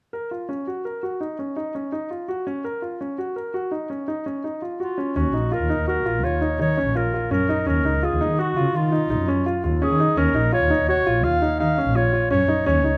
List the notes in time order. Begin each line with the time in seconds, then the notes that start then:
0.13 A#4
0.31 F4
0.49 C#4
0.67 F#4
0.85 A#4
1.03 F#4
1.21 D#4
1.39 C#4
1.56 D#4
1.75 C#4
1.92 D#4
2.10 F4
2.28 F#4
2.47 C#4
2.64 A#4
2.82 F4
3.01 C#4
3.18 F#4
3.36 A#4
3.54 F#4
3.71 D#4
3.90 C#4
4.08 D#4
4.26 C#4
4.44 D#4
4.62 F4
4.80 F4 F#4
4.98 C#4
5.16 D#2 C#4 F#4
5.33 A#1 D#4
5.51 F4 A#4
5.61 D#2
5.70 D#4
5.78 D#2
5.87 F#4 A#4
6.04 A#1 F4
6.22 D#2 F4 C#5
6.41 D#4
6.58 D#3 D#4 C#5
6.77 C#4
6.85 A#1
6.95 F4 A#4
7.14 F4
7.30 F#2 C#4 A#4
7.49 D#4
7.67 D#2 C#4 A#4
7.85 C#2 D#4
8.03 F4 G#4
8.12 D#2
8.21 D#4
8.29 D#3
8.39 F#4
8.56 C#3 F4
8.74 D#3 F4
8.92 D#4
9.10 A#1 D#4
9.19 F#2
9.28 C#4
9.46 F4
9.64 D#2 F4
9.81 C#4 G#4
9.91 D#3
10.00 D#4
10.17 D#2 C#4 A#4
10.35 A#1 D#4
10.52 F4 C#5
10.62 D#2
10.70 D#4
10.80 D#2
10.88 F#4 C#5
11.06 A#1 F4
11.24 D#2 F4 F5
11.42 D#4
11.60 D#3 D#4 F5
11.78 C#4
11.87 A#1
11.95 F4 C#5
12.13 F4
12.30 F#2 C#4 C#5
12.48 D#4
12.66 D#2 C#4 C#5
12.83 C#2 D#4